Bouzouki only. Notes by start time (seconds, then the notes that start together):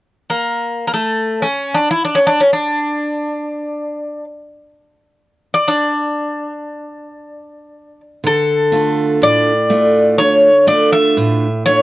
0.30 A#3
0.87 A#3
0.94 A3
1.42 C#4
1.74 D4
1.91 E4
2.05 D4
2.15 C#4
2.27 D4
2.40 C#4
2.53 D4
5.54 D5
5.68 D4
8.27 A4
9.23 D5
10.18 C#5
10.68 D5
10.92 E5
11.66 C#5